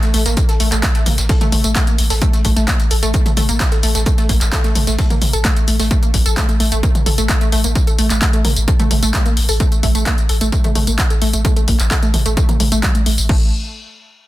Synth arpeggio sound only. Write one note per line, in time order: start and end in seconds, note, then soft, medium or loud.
0.03 0.10 A3 medium
0.14 0.21 A3 loud
0.26 0.33 A#3 medium
0.49 0.59 A4 medium
0.60 0.67 A3 loud
0.72 0.79 A3 medium
0.83 0.90 A3 medium
0.95 1.02 A3 loud
1.06 1.14 A#3 medium
1.29 1.40 A4 medium
1.41 1.48 A3 loud
1.52 1.60 A3 medium
1.64 1.71 A3 medium
1.75 1.83 A3 loud
1.87 1.94 A#3 medium
2.10 2.21 A4 medium
2.22 2.29 A3 loud
2.33 2.40 A3 medium
2.45 2.52 A3 medium
2.56 2.63 A3 loud
2.68 2.75 A#3 medium
2.91 3.02 A4 medium
3.03 3.10 A3 loud
3.14 3.21 A3 medium
3.26 3.33 A3 medium
3.37 3.44 A3 loud
3.49 3.56 A#3 medium
3.72 3.82 A4 medium
3.83 3.90 A3 loud
3.95 4.02 A3 medium
4.06 4.13 A3 medium
4.18 4.25 A3 loud
4.29 4.37 A#3 medium
4.52 4.63 A4 medium
4.64 4.71 A3 loud
4.75 4.83 A3 medium
4.87 4.94 A3 medium
4.99 5.06 A3 loud
5.10 5.17 A#3 medium
5.33 5.44 A4 medium
5.45 5.52 A3 loud
5.56 5.63 A3 medium
5.68 5.75 A3 medium
5.80 5.87 A3 loud
5.91 5.98 A3 loud
6.03 6.10 A#3 medium
6.26 6.36 A4 medium
6.37 6.44 A3 loud
6.49 6.56 A3 medium
6.60 6.71 A3 loud
6.72 6.79 A3 loud
6.83 6.90 A#3 medium
7.06 7.17 A4 medium
7.18 7.25 A3 loud
7.29 7.37 A3 medium
7.41 7.51 A3 loud
7.52 7.60 A3 loud
7.64 7.71 A#3 medium
7.87 7.98 A4 medium
7.99 8.06 A3 loud
8.10 8.17 A3 medium
8.22 8.32 A3 loud
8.33 8.40 A3 loud
8.45 8.52 A#3 medium
8.68 8.79 A4 medium
8.80 8.87 A3 loud
8.91 8.98 A3 medium
9.03 9.13 A3 loud
9.14 9.21 A3 loud
9.26 9.33 A#3 medium
9.49 9.59 A4 medium
9.60 9.67 A3 loud
9.72 9.79 A3 medium
9.83 9.94 A3 loud
9.95 10.02 A3 loud
10.06 10.14 A#3 medium
10.29 10.40 A4 medium
10.41 10.48 A3 loud
10.52 10.60 A3 medium
10.64 10.74 A3 loud
10.76 10.83 A3 loud
10.87 10.94 A#3 medium
11.10 11.21 A4 medium
11.22 11.29 A3 loud
11.33 11.40 A3 medium
11.45 11.55 A3 loud
11.56 11.63 A3 loud
11.68 11.75 A#3 medium
11.91 12.02 A4 medium
12.03 12.10 A3 loud
12.14 12.21 A3 medium
12.26 12.36 A3 loud
12.37 12.44 A3 loud
12.49 12.56 A#3 medium
12.60 12.71 A3 medium
12.72 12.82 A3 loud
12.83 12.94 G3 medium
12.95 13.02 A3 medium
13.06 13.17 A3 medium
13.29 13.51 A3 medium